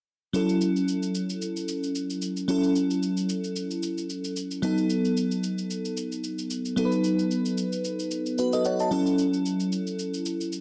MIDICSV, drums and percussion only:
0, 0, Header, 1, 2, 480
1, 0, Start_track
1, 0, Tempo, 535714
1, 310, Time_signature, 4, 2, 24, 8
1, 9504, End_track
2, 0, Start_track
2, 0, Title_t, "Drums"
2, 310, Note_on_c, 9, 82, 68
2, 399, Note_off_c, 9, 82, 0
2, 441, Note_on_c, 9, 82, 50
2, 531, Note_off_c, 9, 82, 0
2, 550, Note_on_c, 9, 82, 79
2, 639, Note_off_c, 9, 82, 0
2, 683, Note_on_c, 9, 82, 43
2, 773, Note_off_c, 9, 82, 0
2, 792, Note_on_c, 9, 82, 66
2, 881, Note_off_c, 9, 82, 0
2, 921, Note_on_c, 9, 82, 51
2, 1010, Note_off_c, 9, 82, 0
2, 1029, Note_on_c, 9, 82, 87
2, 1118, Note_off_c, 9, 82, 0
2, 1163, Note_on_c, 9, 82, 50
2, 1252, Note_off_c, 9, 82, 0
2, 1271, Note_on_c, 9, 82, 73
2, 1361, Note_off_c, 9, 82, 0
2, 1402, Note_on_c, 9, 82, 49
2, 1492, Note_off_c, 9, 82, 0
2, 1510, Note_on_c, 9, 82, 95
2, 1599, Note_off_c, 9, 82, 0
2, 1644, Note_on_c, 9, 82, 46
2, 1733, Note_off_c, 9, 82, 0
2, 1751, Note_on_c, 9, 82, 72
2, 1840, Note_off_c, 9, 82, 0
2, 1882, Note_on_c, 9, 82, 50
2, 1972, Note_off_c, 9, 82, 0
2, 1988, Note_on_c, 9, 82, 79
2, 2078, Note_off_c, 9, 82, 0
2, 2121, Note_on_c, 9, 82, 45
2, 2210, Note_off_c, 9, 82, 0
2, 2230, Note_on_c, 9, 82, 69
2, 2320, Note_off_c, 9, 82, 0
2, 2361, Note_on_c, 9, 82, 48
2, 2451, Note_off_c, 9, 82, 0
2, 2470, Note_on_c, 9, 82, 77
2, 2560, Note_off_c, 9, 82, 0
2, 2604, Note_on_c, 9, 82, 41
2, 2693, Note_off_c, 9, 82, 0
2, 2714, Note_on_c, 9, 82, 67
2, 2803, Note_off_c, 9, 82, 0
2, 2841, Note_on_c, 9, 82, 52
2, 2931, Note_off_c, 9, 82, 0
2, 2951, Note_on_c, 9, 82, 92
2, 3041, Note_off_c, 9, 82, 0
2, 3083, Note_on_c, 9, 82, 49
2, 3173, Note_off_c, 9, 82, 0
2, 3191, Note_on_c, 9, 82, 77
2, 3281, Note_off_c, 9, 82, 0
2, 3323, Note_on_c, 9, 82, 52
2, 3413, Note_off_c, 9, 82, 0
2, 3431, Note_on_c, 9, 82, 94
2, 3521, Note_off_c, 9, 82, 0
2, 3565, Note_on_c, 9, 82, 45
2, 3654, Note_off_c, 9, 82, 0
2, 3672, Note_on_c, 9, 82, 68
2, 3761, Note_off_c, 9, 82, 0
2, 3803, Note_on_c, 9, 82, 50
2, 3893, Note_off_c, 9, 82, 0
2, 3911, Note_on_c, 9, 82, 81
2, 4000, Note_off_c, 9, 82, 0
2, 4042, Note_on_c, 9, 82, 46
2, 4132, Note_off_c, 9, 82, 0
2, 4150, Note_on_c, 9, 82, 74
2, 4240, Note_off_c, 9, 82, 0
2, 4281, Note_on_c, 9, 82, 46
2, 4371, Note_off_c, 9, 82, 0
2, 4390, Note_on_c, 9, 82, 81
2, 4479, Note_off_c, 9, 82, 0
2, 4524, Note_on_c, 9, 82, 42
2, 4614, Note_off_c, 9, 82, 0
2, 4633, Note_on_c, 9, 82, 68
2, 4723, Note_off_c, 9, 82, 0
2, 4762, Note_on_c, 9, 82, 53
2, 4852, Note_off_c, 9, 82, 0
2, 4871, Note_on_c, 9, 82, 86
2, 4960, Note_off_c, 9, 82, 0
2, 5003, Note_on_c, 9, 82, 48
2, 5093, Note_off_c, 9, 82, 0
2, 5113, Note_on_c, 9, 82, 72
2, 5202, Note_off_c, 9, 82, 0
2, 5244, Note_on_c, 9, 82, 50
2, 5333, Note_off_c, 9, 82, 0
2, 5350, Note_on_c, 9, 82, 97
2, 5440, Note_off_c, 9, 82, 0
2, 5484, Note_on_c, 9, 82, 47
2, 5573, Note_off_c, 9, 82, 0
2, 5591, Note_on_c, 9, 82, 69
2, 5680, Note_off_c, 9, 82, 0
2, 5722, Note_on_c, 9, 82, 47
2, 5812, Note_off_c, 9, 82, 0
2, 5829, Note_on_c, 9, 82, 81
2, 5918, Note_off_c, 9, 82, 0
2, 5962, Note_on_c, 9, 82, 48
2, 6051, Note_off_c, 9, 82, 0
2, 6070, Note_on_c, 9, 82, 69
2, 6160, Note_off_c, 9, 82, 0
2, 6200, Note_on_c, 9, 82, 50
2, 6289, Note_off_c, 9, 82, 0
2, 6309, Note_on_c, 9, 82, 79
2, 6398, Note_off_c, 9, 82, 0
2, 6442, Note_on_c, 9, 82, 41
2, 6532, Note_off_c, 9, 82, 0
2, 6551, Note_on_c, 9, 82, 65
2, 6641, Note_off_c, 9, 82, 0
2, 6680, Note_on_c, 9, 82, 53
2, 6769, Note_off_c, 9, 82, 0
2, 6788, Note_on_c, 9, 82, 89
2, 6878, Note_off_c, 9, 82, 0
2, 6922, Note_on_c, 9, 82, 49
2, 7012, Note_off_c, 9, 82, 0
2, 7030, Note_on_c, 9, 82, 74
2, 7120, Note_off_c, 9, 82, 0
2, 7163, Note_on_c, 9, 82, 53
2, 7252, Note_off_c, 9, 82, 0
2, 7268, Note_on_c, 9, 82, 97
2, 7358, Note_off_c, 9, 82, 0
2, 7403, Note_on_c, 9, 82, 49
2, 7492, Note_off_c, 9, 82, 0
2, 7510, Note_on_c, 9, 82, 74
2, 7600, Note_off_c, 9, 82, 0
2, 7641, Note_on_c, 9, 82, 47
2, 7731, Note_off_c, 9, 82, 0
2, 7748, Note_on_c, 9, 82, 80
2, 7838, Note_off_c, 9, 82, 0
2, 7881, Note_on_c, 9, 82, 46
2, 7970, Note_off_c, 9, 82, 0
2, 7988, Note_on_c, 9, 82, 72
2, 8078, Note_off_c, 9, 82, 0
2, 8121, Note_on_c, 9, 82, 50
2, 8211, Note_off_c, 9, 82, 0
2, 8229, Note_on_c, 9, 82, 78
2, 8319, Note_off_c, 9, 82, 0
2, 8364, Note_on_c, 9, 82, 42
2, 8454, Note_off_c, 9, 82, 0
2, 8474, Note_on_c, 9, 82, 65
2, 8564, Note_off_c, 9, 82, 0
2, 8602, Note_on_c, 9, 82, 52
2, 8692, Note_off_c, 9, 82, 0
2, 8712, Note_on_c, 9, 82, 92
2, 8802, Note_off_c, 9, 82, 0
2, 8843, Note_on_c, 9, 82, 50
2, 8933, Note_off_c, 9, 82, 0
2, 8952, Note_on_c, 9, 82, 71
2, 9042, Note_off_c, 9, 82, 0
2, 9085, Note_on_c, 9, 82, 51
2, 9174, Note_off_c, 9, 82, 0
2, 9191, Note_on_c, 9, 82, 98
2, 9281, Note_off_c, 9, 82, 0
2, 9325, Note_on_c, 9, 82, 50
2, 9414, Note_off_c, 9, 82, 0
2, 9431, Note_on_c, 9, 82, 69
2, 9504, Note_off_c, 9, 82, 0
2, 9504, End_track
0, 0, End_of_file